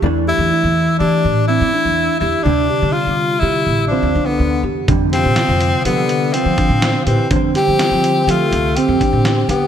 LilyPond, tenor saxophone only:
\new Staff \with { instrumentName = "Tenor saxophone" } { \time 5/4 \key f \lydian \tempo 4 = 124 r8 e'4. d'4 e'4. e'8 | d'4 f'4 e'4 d'8. b8. r8 | r8 c'4. b4 c'4. c'8 | r8 g'4. f'4 g'4. g'8 | }